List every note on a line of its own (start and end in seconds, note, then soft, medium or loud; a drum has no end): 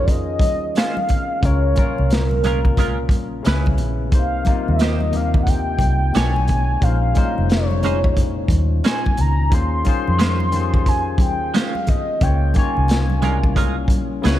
0.00 0.40 F2 medium
0.00 1.45 D#3 medium
0.00 1.42 C#4 medium
0.00 1.43 F4 medium
0.00 1.45 G#4 medium
0.00 1.00 A#4 medium
0.00 1.44 C#5 medium
0.00 1.45 D#5 medium
0.05 0.12 D5 medium
0.05 kick loud
0.05 closed hi-hat medium
0.10 0.76 D#5 loud
0.39 0.71 D#2 medium
0.39 kick loud
0.39 closed hi-hat medium
0.39 muted conga soft
0.39 high conga medium
0.75 0.95 G#3 medium
0.75 0.95 C#4 medium
0.75 0.96 F4 loud
0.75 0.96 C5 loud
0.75 1.47 F5 loud
0.75 snare loud
0.75 closed hi-hat medium
0.75 muted conga soft
0.97 high conga medium
1.09 kick medium
1.09 closed hi-hat medium
1.09 muted conga soft
1.09 low conga medium
1.40 1.73 C#2 loud
1.40 1.73 C#3 medium
1.40 1.73 C#4 medium
1.40 1.74 F4 medium
1.40 kick loud
1.40 closed hi-hat medium
1.45 1.75 A#4 medium
1.45 2.14 C#5 loud
1.74 2.37 A#2 medium
1.74 2.38 C#4 medium
1.74 2.39 F4 medium
1.74 closed hi-hat medium
1.74 muted conga soft
1.74 high conga medium
1.78 2.40 A#4 medium
1.78 kick medium
1.98 3.10 C2 medium
1.98 high conga soft
2.10 3.12 A#4 medium
2.10 snare loud
2.10 closed hi-hat medium
2.10 muted conga soft
2.31 high conga medium
2.41 3.43 A#2 medium
2.41 2.59 G#3 medium
2.41 3.43 C#4 medium
2.41 3.45 F4 medium
2.41 closed hi-hat medium
2.41 muted conga soft
2.41 high conga medium
2.41 low conga medium
2.45 2.59 C#4 medium
2.45 2.60 F4 medium
2.45 3.46 A#4 medium
2.45 2.60 A#4 medium
2.65 kick medium
2.65 low conga medium
2.77 2.97 G#3 medium
2.77 2.97 C#4 medium
2.77 2.97 F4 medium
2.77 2.98 A#4 loud
2.77 kick medium
2.77 closed hi-hat medium
2.77 muted conga soft
3.09 3.41 A#1 loud
3.09 kick loud
3.09 closed hi-hat medium
3.09 high conga medium
3.43 4.06 C#3 loud
3.43 3.64 G#3 medium
3.43 4.07 C#4 medium
3.43 4.08 E4 medium
3.43 closed hi-hat medium
3.43 muted conga soft
3.47 3.80 C#2 medium
3.47 3.65 C#4 medium
3.47 3.65 E4 loud
3.47 4.09 B4 loud
3.47 3.65 B4 loud
3.47 snare loud
3.66 kick medium
3.66 high conga medium
3.78 4.13 A#1 medium
3.78 closed hi-hat medium
3.78 muted conga soft
3.78 low conga medium
4.10 4.43 C2 medium
4.10 4.42 C3 medium
4.10 4.43 A#3 medium
4.10 4.44 D#4 medium
4.10 kick loud
4.10 closed hi-hat medium
4.15 4.45 C5 medium
4.15 4.71 F5 medium
4.44 5.07 C3 medium
4.44 5.08 A#3 medium
4.44 5.09 D#4 medium
4.44 kick medium
4.44 closed hi-hat medium
4.44 muted conga soft
4.44 high conga medium
4.49 5.10 F4 medium
4.68 5.78 D#2 medium
4.68 5.18 D#5 medium
4.68 high conga soft
4.79 4.99 A#3 medium
4.79 4.99 D#4 medium
4.79 5.00 G4 medium
4.79 5.00 C5 loud
4.79 snare loud
4.79 closed hi-hat medium
4.79 muted conga soft
5.00 high conga medium
5.11 6.13 C3 medium
5.11 6.14 A#3 medium
5.11 6.15 D#4 medium
5.11 closed hi-hat medium
5.11 muted conga soft
5.11 high conga medium
5.11 low conga medium
5.15 6.15 G4 medium
5.15 5.43 F5 loud
5.34 kick medium
5.34 low conga medium
5.43 5.51 F#5 medium
5.43 kick medium
5.43 closed hi-hat medium
5.49 6.18 G5 loud
5.79 6.10 C2 loud
5.79 kick loud
5.79 closed hi-hat medium
5.79 muted conga soft
5.79 high conga medium
6.12 6.75 B1 medium
6.12 6.76 B2 medium
6.12 6.76 A3 medium
6.12 6.77 D4 medium
6.12 6.34 D4 medium
6.12 6.34 E4 medium
6.12 6.77 E4 medium
6.12 6.34 A4 medium
6.12 6.85 G#5 loud
6.12 closed hi-hat medium
6.12 muted conga soft
6.17 6.24 B4 medium
6.17 6.35 C#5 loud
6.17 snare loud
6.24 6.81 C#5 loud
6.36 high conga medium
6.48 kick medium
6.48 closed hi-hat medium
6.48 low conga medium
6.80 7.12 A#1 loud
6.80 7.12 A#2 medium
6.80 7.13 G#3 medium
6.80 7.13 C#4 medium
6.80 7.14 D#4 medium
6.80 7.50 F5 loud
6.80 kick loud
6.80 closed hi-hat medium
6.85 7.15 C5 medium
7.13 7.77 A#2 medium
7.13 7.77 G#3 medium
7.13 7.78 C#4 medium
7.13 7.78 D#4 medium
7.13 kick medium
7.13 closed hi-hat medium
7.13 muted conga soft
7.13 high conga medium
7.18 7.79 C5 loud
7.38 8.47 F1 medium
7.38 high conga soft
7.50 8.47 C#5 medium
7.50 snare loud
7.50 closed hi-hat medium
7.71 high conga medium
7.81 9.07 A#2 medium
7.81 9.07 G#3 medium
7.81 9.08 C#4 medium
7.81 7.98 C#4 medium
7.81 7.99 D#4 medium
7.81 9.08 D#4 medium
7.81 closed hi-hat medium
7.81 muted conga soft
7.81 high conga medium
7.81 low conga medium
7.85 7.93 E4 medium
7.85 7.99 G#4 medium
7.85 7.99 C5 medium
7.93 9.12 F4 medium
8.04 kick medium
8.04 low conga medium
8.17 kick medium
8.17 closed hi-hat medium
8.17 muted conga soft
8.48 8.80 D#2 loud
8.48 kick loud
8.48 closed hi-hat medium
8.48 muted conga soft
8.48 high conga medium
8.84 9.03 C#4 medium
8.84 9.03 D#4 medium
8.84 9.04 G#4 loud
8.84 9.04 C5 loud
8.84 9.22 G#5 loud
8.84 snare loud
8.84 closed hi-hat medium
8.84 muted conga soft
9.06 kick medium
9.06 high conga medium
9.17 9.53 C#2 medium
9.17 9.55 A#5 loud
9.17 closed hi-hat medium
9.17 muted conga soft
9.17 low conga medium
9.49 9.82 D#2 loud
9.49 9.82 D#3 medium
9.49 9.82 C#4 medium
9.49 9.83 F4 medium
9.49 9.83 G#4 medium
9.49 kick loud
9.49 closed hi-hat medium
9.49 muted conga soft
9.54 9.84 C5 medium
9.54 10.90 C6 loud
9.84 10.47 D#3 medium
9.84 10.47 C#4 medium
9.84 10.48 F4 medium
9.84 10.49 G#4 medium
9.84 kick medium
9.84 closed hi-hat medium
9.84 high conga medium
9.89 10.49 C5 medium
10.07 11.19 F2 medium
10.07 high conga medium
10.19 10.38 G#3 medium
10.19 10.38 C#4 medium
10.19 10.38 F4 medium
10.19 10.39 C5 medium
10.19 snare loud
10.19 closed hi-hat medium
10.40 high conga medium
10.51 11.76 D#3 medium
10.51 11.77 C#4 medium
10.51 11.78 F4 medium
10.51 10.62 G4 medium
10.51 closed hi-hat medium
10.51 high conga medium
10.51 low conga medium
10.56 11.79 C5 medium
10.61 11.81 G#4 medium
10.74 kick medium
10.74 low conga medium
10.86 11.21 G#5 loud
10.86 kick medium
10.86 closed hi-hat medium
11.18 11.49 D#2 medium
11.18 11.57 G5 medium
11.18 kick loud
11.18 closed hi-hat medium
11.18 high conga medium
11.54 11.73 G#3 medium
11.54 11.73 C#4 medium
11.54 11.74 F4 loud
11.54 11.74 C5 medium
11.54 11.91 F5 medium
11.54 snare loud
11.54 closed hi-hat loud
11.75 high conga medium
11.87 12.24 D#5 loud
11.87 kick medium
11.87 closed hi-hat medium
11.87 low conga medium
12.19 12.52 C#2 loud
12.19 12.51 C#3 medium
12.19 12.52 A#3 medium
12.19 12.53 F4 medium
12.19 12.58 G5 medium
12.19 kick loud
12.19 closed hi-hat medium
12.19 muted conga soft
12.24 12.54 C#5 medium
12.53 13.17 A#3 medium
12.53 13.16 C#4 medium
12.53 12.64 D#4 medium
12.53 13.90 G#5 loud
12.53 kick loud
12.53 closed hi-hat medium
12.53 muted conga soft
12.53 high conga medium
12.59 13.19 C#5 loud
12.63 13.21 F4 medium
12.77 13.89 C2 medium
12.77 high conga soft
12.88 snare loud
12.88 closed hi-hat medium
12.88 muted conga soft
13.10 high conga medium
13.20 13.37 G#3 medium
13.20 14.23 A#3 medium
13.20 14.23 C#4 medium
13.20 13.37 C#4 medium
13.20 13.31 E4 medium
13.20 13.38 F4 medium
13.20 13.38 A#4 medium
13.20 closed hi-hat medium
13.20 high conga medium
13.20 low conga medium
13.26 14.25 G3 medium
13.30 14.27 F4 medium
13.44 kick medium
13.44 low conga medium
13.56 13.75 G#3 medium
13.56 13.75 C#4 medium
13.56 13.75 F4 medium
13.56 13.76 A#4 medium
13.56 kick medium
13.56 closed hi-hat medium
13.88 14.19 A#1 medium
13.88 kick loud
13.88 closed hi-hat medium
13.88 muted conga soft
13.88 high conga medium
14.22 14.39 C#2 loud
14.22 14.39 C#3 loud
14.22 14.39 B3 loud
14.22 14.39 B3 medium
14.22 14.39 E4 medium
14.22 14.39 G#4 medium
14.22 closed hi-hat loud
14.22 muted conga soft
14.26 14.39 B4 loud
14.26 14.39 C#5 loud
14.26 snare loud